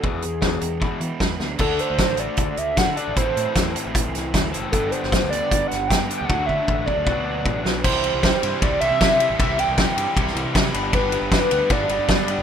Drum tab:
CC |----------------|x---------------|----------------|----------------|
RD |----------------|----------------|----------------|----------------|
HH |--x---x---x-----|--x-x-x-x-x-x-x-|x-x-x-x-x-x-x-x-|x-x-x-x-x-x-x-x-|
SD |----o-------o-o-|----o-------o---|----o-----o-o---|---oo-----o-o---|
BD |o---o---o---o---|o---o---o---o---|o---o---o---o---|o---o---o---o---|

CC |----------------|x---------------|----------------|----------------|
RD |----------------|--x-x-x-x-x-x-x-|x-x-x-x-x-x-x-x-|x-x-x-x-x-x-x-x-|
HH |----------------|----------------|----------------|----------------|
SD |--------------o-|----o-------o---|----o----o--oo--|----o-------o---|
BD |o-o-o-o-o---o---|o---o---o---o---|o---o---o---o---|o---o---o---o---|